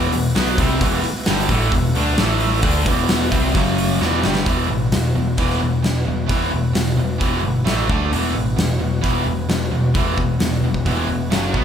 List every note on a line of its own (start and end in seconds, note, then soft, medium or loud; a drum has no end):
0.00 0.11 E1 medium
0.00 0.12 E2 medium
0.00 0.11 B2 loud
0.00 0.13 E3 loud
0.00 2.14 E3 medium
0.00 2.15 B3 medium
0.00 2.15 F#4 medium
0.12 0.34 E1 medium
0.12 0.31 E2 medium
0.12 0.31 B2 medium
0.12 open hi-hat medium
0.35 0.57 B1 medium
0.35 0.58 B2 loud
0.35 0.58 F#3 loud
0.35 0.59 B3 medium
0.35 snare loud
0.35 open hi-hat medium
0.58 0.80 C2 loud
0.58 0.81 C3 medium
0.58 0.82 G3 loud
0.58 0.82 C4 loud
0.58 kick loud
0.58 open hi-hat medium
0.81 1.03 E1 loud
0.81 1.04 E2 medium
0.81 1.04 B2 medium
0.81 1.04 E3 loud
0.81 kick loud
0.81 open hi-hat medium
1.04 muted distorted electric guitar stroke medium
1.04 muted overdriven electric guitar stroke medium
1.04 muted picked electric bass stroke soft
1.04 open hi-hat medium
1.26 1.48 G1 loud
1.26 1.49 G2 loud
1.26 1.49 D3 loud
1.26 1.50 G3 loud
1.26 snare loud
1.26 open hi-hat medium
1.49 1.71 A1 loud
1.49 1.72 A2 medium
1.49 1.72 E3 medium
1.49 1.73 A3 loud
1.49 kick loud
1.49 open hi-hat medium
1.72 1.93 E1 medium
1.72 1.91 E2 medium
1.72 1.92 B2 medium
1.72 kick medium
1.72 open hi-hat medium
1.94 2.16 D2 medium
1.94 2.18 D3 medium
1.94 2.18 A3 medium
1.94 2.19 D4 loud
1.94 open hi-hat medium
2.18 2.61 A1 medium
2.18 2.64 A2 medium
2.18 2.64 E3 loud
2.18 2.64 A3 medium
2.18 2.64 A3 loud
2.18 2.64 E4 medium
2.18 2.64 B4 medium
2.18 snare loud
2.18 open hi-hat medium
2.40 open hi-hat medium
2.62 2.85 D2 medium
2.62 2.86 D3 medium
2.62 3.54 E3 medium
2.62 2.87 A3 medium
2.62 3.55 B3 medium
2.62 2.87 D4 loud
2.62 4.44 F#4 medium
2.62 kick loud
2.62 open hi-hat medium
2.85 3.29 E1 loud
2.85 3.31 E2 medium
2.85 3.31 B2 medium
2.85 3.32 E3 medium
2.85 kick loud
2.85 open hi-hat medium
3.09 snare loud
3.09 open hi-hat medium
3.31 3.53 C2 medium
3.31 3.54 C3 medium
3.31 3.55 G3 loud
3.31 3.55 C4 medium
3.31 kick loud
3.31 open hi-hat medium
3.54 3.98 F#1 loud
3.54 4.00 F#2 medium
3.54 4.00 C#3 loud
3.54 4.00 F#3 medium
3.54 4.00 F#3 loud
3.54 4.00 C#4 medium
3.54 kick loud
3.54 open hi-hat medium
3.78 open hi-hat medium
4.00 4.22 E1 medium
4.00 4.23 E2 medium
4.00 4.23 B2 medium
4.00 4.44 E3 medium
4.00 4.23 E3 medium
4.00 4.44 B3 medium
4.00 snare medium
4.23 4.45 G1 medium
4.23 4.45 G2 loud
4.23 4.46 D3 loud
4.23 4.46 G3 loud
4.23 snare medium
4.35 snare medium
4.45 4.67 E1 medium
4.45 4.68 E2 medium
4.45 4.68 B2 medium
4.45 7.62 E3 medium
4.45 4.68 E3 medium
4.45 7.62 B3 medium
4.45 7.63 F#4 medium
4.45 kick loud
4.45 open hi-hat medium
4.69 4.91 A1 medium
4.69 4.90 E2 medium
4.69 4.90 B2 medium
4.92 5.14 E1 medium
4.92 5.13 E2 medium
4.92 5.13 B2 medium
4.92 snare loud
4.92 open hi-hat medium
5.16 5.36 E1 medium
5.16 5.36 E2 medium
5.16 5.36 B2 medium
5.38 5.59 E1 medium
5.38 5.59 E2 medium
5.38 5.60 B2 medium
5.38 5.60 E3 medium
5.38 kick loud
5.38 open hi-hat soft
5.50 snare soft
5.60 5.82 E1 medium
5.60 5.81 E2 medium
5.60 5.81 B2 medium
5.84 6.05 E1 medium
5.84 6.04 E2 medium
5.84 6.04 B2 medium
5.84 snare loud
5.84 open hi-hat soft
6.08 6.28 E1 medium
6.08 6.28 E2 medium
6.08 6.28 B2 medium
6.29 6.50 E1 medium
6.29 6.51 E2 medium
6.29 6.52 B2 medium
6.29 6.52 E3 medium
6.29 kick loud
6.29 open hi-hat medium
6.52 6.74 E1 medium
6.52 6.73 E2 medium
6.52 6.73 B2 medium
6.74 6.95 E1 medium
6.74 6.96 E2 medium
6.74 6.96 B2 medium
6.74 snare loud
6.74 open hi-hat medium
6.96 7.18 E1 medium
6.96 7.19 E2 medium
6.96 7.19 B2 medium
7.20 7.42 E1 medium
7.20 7.42 E2 medium
7.20 7.43 B2 medium
7.20 7.43 E3 loud
7.20 kick loud
7.20 open hi-hat medium
7.43 7.64 G1 medium
7.43 7.64 E2 medium
7.43 7.65 B2 medium
7.66 7.87 A1 medium
7.66 7.88 A2 medium
7.66 7.88 E3 medium
7.66 7.88 A3 medium
7.66 7.90 A3 medium
7.66 7.90 E4 medium
7.66 7.89 B4 medium
7.66 snare loud
7.66 open hi-hat medium
7.89 8.10 D2 medium
7.89 8.11 D3 medium
7.89 8.11 A3 loud
7.89 8.12 D4 medium
7.89 8.11 D4 loud
7.89 8.12 A4 medium
7.89 8.12 E5 medium
7.89 kick loud
8.12 8.32 E1 medium
8.12 8.34 E2 medium
8.12 8.34 B2 medium
8.12 8.34 E3 medium
8.12 11.29 E3 medium
8.12 11.30 B3 medium
8.12 11.29 F#4 medium
8.12 open hi-hat medium
8.35 8.56 A1 medium
8.35 8.56 E2 medium
8.35 8.56 B2 medium
8.57 8.78 E1 medium
8.57 8.78 E2 medium
8.57 8.79 B2 medium
8.57 snare loud
8.57 open hi-hat medium
8.79 9.01 E1 medium
8.79 9.01 E2 medium
8.79 9.01 B2 medium
9.02 9.24 E1 medium
9.02 9.24 E2 medium
9.02 9.25 B2 medium
9.02 9.25 E3 loud
9.02 kick loud
9.02 open hi-hat soft
9.26 9.46 E1 medium
9.26 9.47 E2 medium
9.26 9.47 B2 medium
9.49 9.69 E1 medium
9.49 9.70 E2 medium
9.49 9.70 B2 medium
9.49 snare loud
9.49 open hi-hat soft
9.72 9.92 E1 medium
9.72 9.92 E2 medium
9.72 9.92 B2 medium
9.94 10.15 E1 medium
9.94 10.16 E2 medium
9.94 10.16 B2 medium
9.94 10.16 E3 medium
9.94 kick loud
9.94 open hi-hat medium
10.17 10.38 E1 medium
10.17 10.38 E2 medium
10.17 10.38 B2 medium
10.17 kick medium
10.39 10.61 E1 medium
10.39 10.60 E2 medium
10.39 10.61 B2 medium
10.39 snare loud
10.39 open hi-hat medium
10.63 10.83 E1 medium
10.63 10.84 E2 medium
10.63 10.84 B2 medium
10.74 kick medium
10.86 11.06 E1 medium
10.86 11.08 E2 loud
10.86 11.08 B2 medium
10.86 11.08 E3 medium
10.86 kick medium
10.86 open hi-hat medium
11.08 11.29 E1 medium
11.08 11.29 E2 medium
11.08 11.29 B2 medium
11.31 11.53 F#1 medium
11.31 11.52 F#2 medium
11.31 11.53 C#3 medium
11.31 11.53 F#3 medium
11.31 11.54 F#3 medium
11.31 11.55 C#4 medium
11.31 11.64 F#4 medium
11.31 snare loud
11.31 open hi-hat soft
11.54 11.64 B1 medium
11.54 11.64 B2 medium
11.54 11.64 F#3 medium
11.54 11.64 B3 medium
11.54 11.64 B3 loud
11.54 11.64 B4 medium
11.54 kick medium